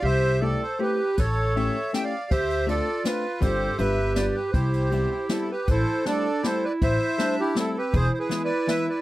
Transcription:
<<
  \new Staff \with { instrumentName = "Accordion" } { \time 3/4 \key c \major \tempo 4 = 160 <c'' e''>4 <a' d''>8 <a' c''>8 <g' b'>4 | <a' cis''>4 <cis'' e''>4 <e'' g''>16 <d'' f''>8. | <c'' e''>4 <a' d''>4 <f' b'>4 | <g' c''>4 <b' e''>4 <b' d''>8 <g' b'>8 |
<g' c''>4. <e' g'>8 <e' a'>8 <g' b'>8 | \key a \minor <a' c''>4 <a' d''>4 <a' c''>8 <b' d''>8 | <c'' e''>4. <e' g'>8 <e' a'>8 <g' b'>8 | \tuplet 3/2 { <gis' c''>8. c''16 <gis' b'>8~ <gis' b'>8 <b' d''>4 } <b' e''>8 <b' d''>8 | }
  \new Staff \with { instrumentName = "Clarinet" } { \time 3/4 \key c \major g'4 a'4 g'4 | a'2~ a'8 r8 | g'4 f'2 | a'4 g'2 |
e'4 g'4. r8 | \key a \minor e'4 d'4 e'4~ | e'4 d'4 c'4 | e'2. | }
  \new Staff \with { instrumentName = "Hollow-body jazz guitar" } { \time 3/4 \key c \major r4 <a c' e' g'>8 r8 <a c' e' g'>8 r8 | r4 <a cis' e' g'>8 r8 <a cis' e' g'>8 r8 | r4 <a c' d' f'>8 r8 <a c' d' f'>8 r8 | <g c' d' f'>4 <g b d' f'>8 r8 <g b d' f'>8 r8 |
r4 <g b c' e'>8 r8 <g b c' e'>8 r8 | \key a \minor r4 <g a c' e'>8 r8 <g a c' e'>8 r8 | r4 <g a c' e'>8 r8 <g a c' e'>8 r8 | r4 <e gis b e'>8 r8 <e gis b e'>8 r8 | }
  \new Staff \with { instrumentName = "Upright bass" } { \clef bass \time 3/4 \key c \major c,2 r4 | a,,2 r4 | d,2 r4 | g,,4 g,,2 |
c,2 r4 | \key a \minor a,,8 r2 r8 | a,,8 r2 r8 | e,,8 r2 r8 | }
  \new DrumStaff \with { instrumentName = "Drums" } \drummode { \time 3/4 r4 r4 r4 | <bd cymr>4 cymr4 <cymr sn>4 | <bd cymr>8 cymr8 cymr4 <cymr sn>4 | <bd cymr>4 cymr4 <cymr sn>4 |
<bd cymr>8 cymr8 cymr4 <cymr sn>4 | <hh bd>4 <hh sn>4 <hh sn>4 | <hh bd>4 <hh sn>4 <hh sn>4 | <hh bd>4 <hh sn>4 <hh sn>4 | }
>>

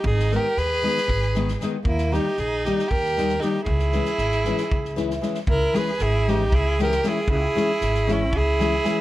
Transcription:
<<
  \new Staff \with { instrumentName = "Alto saxophone" } { \time 7/8 \tempo 4 = 116 gis'8 ais'8 b'2 r8 | e'8 g'8 gis'8 g'8 ais'4 g'8 | gis'2. r8 | ais'8 b'8 gis'8 g'8 gis'8 ais'8 gis'8 |
gis'4. e'8 gis'4. | }
  \new Staff \with { instrumentName = "Violin" } { \time 7/8 dis'8 g'8 gis'2 r8 | ais8 dis'8 dis'8 dis'8 g'4 dis'8 | e'2. r8 | e'8 gis'8 e'8 dis'8 e'8 g'8 e'8 |
e'4. cis'8 e'4. | }
  \new Staff \with { instrumentName = "Nylon-string guitar" } { \time 7/8 r8 <dis gis b dis'>8 r8 <dis gis b dis'>8 r8 <dis gis b dis'>8 <dis gis b dis'>8 | r8 <dis g ais dis'>8 r8 <dis g ais dis'>8 r8 <dis g ais dis'>8 <dis g ais dis'>8 | r8 <e gis cis' e'>8 r8 <e gis cis' e'>8 r8 <e gis cis' e'>8 <e gis cis' e'>8 | r8 <e gis cis' e' gis'>8 r8 <e gis cis' e' gis'>8 r8 <e gis cis' e' gis'>8 <e gis cis' e' gis'>8 |
r8 <e gis cis' e' gis'>8 r8 <e gis cis' e' gis'>8 r8 <e gis cis' e' gis'>8 <e gis cis' e' gis'>8 | }
  \new Staff \with { instrumentName = "Upright bass" } { \clef bass \time 7/8 gis,,4 dis,4 gis,,4. | dis,4 ais,,4 dis,4. | cis,4 gis,,4 cis,4. | cis,8 r8 gis,,4 cis,4. |
cis,8 r8 gis,,4 cis,4. | }
  \new DrumStaff \with { instrumentName = "Drums" } \drummode { \time 7/8 bd16 sn16 sn8 sn8. sn16 bd16 sn16 sn16 sn16 sn8 | bd16 sn16 sn8 sn8 sn16 sn16 bd16 sn16 sn16 sn16 sn8 | bd16 sn16 sn16 sn16 sn16 sn16 sn16 sn16 bd16 sn16 sn16 sn16 sn16 sn16 | bd8 sn8 sn8 sn8 bd8 sn16 sn16 sn8 |
bd8 sn8 sn16 sn16 sn8 bd8 sn8 sn8 | }
>>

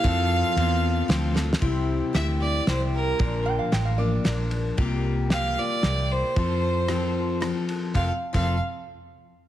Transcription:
<<
  \new Staff \with { instrumentName = "Resonator guitar played with a steel bar" } { \time 3/4 \key f \major \tempo 4 = 114 r2. | r2. | r8 g''16 f''16 g''16 f''16 d''4 r8 | r2. |
r2. | r2. | }
  \new Staff \with { instrumentName = "Fiddle" } { \time 3/4 \key f \major f''2~ f''8 r8 | r4 e''8 d''8 c''8 bes'8~ | bes'8 r2 r8 | r4 f''8 d''4 c''8~ |
c''2 r4 | f''16 r8 f''8 r4. r16 | }
  \new Staff \with { instrumentName = "Steel-string acoustic guitar" } { \time 3/4 \key f \major <f c' f' a'>4 <c' f' a'>4 <f c' f' a'>8 <c' f' a'>8 | <c g c' e' g'>4 <g c' e' g'>8 <c' e' g'>8 <g c' e' g'>4 | <bes, d f bes d' bes'>4 <f bes d' bes'>8 <f bes d' bes'>8 <f bes d' bes'>4 | <c g bes f' g'>4 <g bes f' g'>8 <bes f' g'>8 <g bes e' g'>4 |
<f c' f' a'>4 <f c' f' a'>4 <f c' f' a'>4 | <f c' f' a'>16 r8 <f c' f' a'>8 r4. r16 | }
  \new Staff \with { instrumentName = "Fingered electric bass" } { \clef bass \time 3/4 \key f \major f,4 e,4 d,4 | c,4 d,4 c,4 | bes,,4 a,,4 bes,,4 | c,2 c,4 |
f,2. | f,,16 r8 f,,8 r4. r16 | }
  \new DrumStaff \with { instrumentName = "Drums" } \drummode { \time 3/4 <bd cymr>4 cymr4 \tuplet 3/2 { <cymr sn>16 r16 r16 sn16 r16 sn16 } | <bd cymr>4 <cymr sn>4 <cymr sn>4 | <bd cymr>4 <cymr sn>4 <cymr sn>8 cymr8 | <bd cymr>4 <cymr sn>4 <cymr sn>4 |
<bd cymr>4 <cymr ss>4 <cymr ss>8 cymr8 | <bd cymr>8. <bd cymr>16 r4 r4 | }
>>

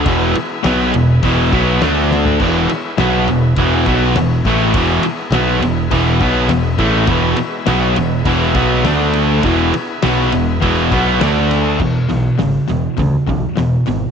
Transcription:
<<
  \new Staff \with { instrumentName = "Tonewheel organ" } { \time 4/4 \key e \mixolydian \tempo 4 = 102 <b e' gis'>2. <a d' a'>4 | <b e' gis'>1 | <b e' gis'>1 | <gis b e'>2. <a d' a'>4 |
<b e' gis'>2. <a d' a'>4 | r1 | }
  \new Staff \with { instrumentName = "Overdriven electric guitar" } { \clef bass \time 4/4 \key e \mixolydian <e, b, e>8 r8 <b, fis b>8 <e, b,>8 <e, b, e>8 <b, fis b>8 <d a d'>4 | <e, b, e>8 r8 <b, fis b>8 <e, b,>8 <e, b, e>8 <b, fis b>8 <e, b,>8 <a, e a>8 | <e, b, e>8 r8 <b, fis b>8 <e, b,>8 <e, b, e>8 <b, fis b>8 <e, b,>8 <a, e a>8 | <e, b, e>8 r8 <b, fis b>8 <e, b,>8 <e, b, e>8 <b, fis b>8 <d a d'>4 |
<e, b, e>8 r8 <b, fis b>8 <e, b,>8 <e, b, e>8 <b, fis b>8 <d a d'>4 | <e, b,>8 <e, b,>8 <e, cis>8 <e, b,>8 <e, cis>8 <e, cis>8 <e, b,>8 <e, b,>8 | }
  \new Staff \with { instrumentName = "Overdriven electric guitar" } { \clef bass \time 4/4 \key e \mixolydian <e, b, e>8 r8 <b, fis b>8 <e, b,>8 <e, b, e>8 <b, fis b>8 <d a d'>4 | <e, b, e>8 r8 <b, fis b>8 <e, b,>8 <e, b, e>8 <b, fis b>8 <e, b,>8 <a, e a>8 | <e, b, e>8 r8 <b, fis b>8 <e, b,>8 <e, b, e>8 <b, fis b>8 <e, b,>8 <a, e a>8 | <e, b, e>8 r8 <b, fis b>8 <e, b,>8 <e, b, e>8 <b, fis b>8 <d a d'>4 |
<e, b, e>8 r8 <b, fis b>8 <e, b,>8 <e, b, e>8 <b, fis b>8 <d a d'>4 | <e, b,>8 <e, b,>8 <e, cis>8 <e, b,>8 <e, cis>8 <e, cis>8 <e, b,>8 <e, b,>8 | }
  \new Staff \with { instrumentName = "Picked electric bass" } { \clef bass \time 4/4 \key e \mixolydian e,,8 r8 b,,8 e,,8 e,,8 b,,8 d,4 | e,,8 r8 b,,8 e,,8 e,,8 b,,8 e,,8 a,,8 | e,,8 r8 b,,8 e,,8 e,,8 b,,8 e,,8 a,,8 | e,,8 r8 b,,8 e,,8 e,,8 b,,8 d,4 |
e,,8 r8 b,,8 e,,8 e,,8 b,,8 d,4 | e,,8 b,,8 gis,,8 e,,8 d,8 b,,8 e,,8 gis,,8 | }
  \new DrumStaff \with { instrumentName = "Drums" } \drummode { \time 4/4 <bd cymr>8 cymr8 <cymr sn>8 cymr8 <bd cymr>8 <bd cymr>8 <cymr sn>8 sn16 tomfh16 | <cymc bd>8 cymr8 <cymr sn>8 cymr8 <bd cymr>8 <bd cymr>8 <cymr sn>8 <bd cymr sn>8 | <bd cymr>8 cymr8 <cymr sn>8 cymr8 <bd cymr>8 <bd cymr>8 <cymr sn>8 <bd cymr>8 | <bd cymr>8 cymr8 <cymr sn>8 cymr8 <bd cymr>8 <bd cymr>8 <cymr sn>8 cymr8 |
<bd cymr>8 cymr8 <cymr sn>8 cymr8 <bd cymr>8 <bd cymr>8 <cymr sn>8 <cymr sn>8 | <cymc bd>8 hho8 <hho sn>8 hho8 <hho bd>8 <hho bd>8 <hho sn>8 hho8 | }
>>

